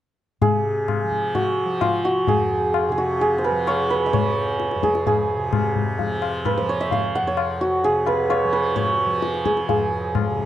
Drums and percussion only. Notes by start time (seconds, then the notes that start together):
0.42 tabla tin, tabla ge
0.88 tabla na, tabla ge
1.12 tabla ge
1.35 tabla tin, tabla ge
1.81 tabla na, tabla ge
2.27 tabla tin, tabla ge
2.74 tabla na
3.20 tabla tin
3.44 tabla na
3.67 tabla na
4.14 tabla tin, tabla ge
4.60 tabla te
4.71 tabla te
4.83 tabla ke
4.95 tabla te
5.07 tabla tin, tabla ge
5.53 tabla na, tabla ge
5.76 tabla ge
5.99 tabla tin, tabla ge
6.22 tabla na
6.45 tabla na, tabla ge
6.91 tabla tin, tabla ge
7.37 tabla na
7.84 tabla tin
8.06 tabla na
8.30 tabla na
8.76 tabla tin, tabla ge
9.22 tabla te
9.34 tabla te
9.46 tabla ke
9.57 tabla te
9.69 tabla tin, tabla ge
10.15 tabla na, tabla ge
10.38 tabla ge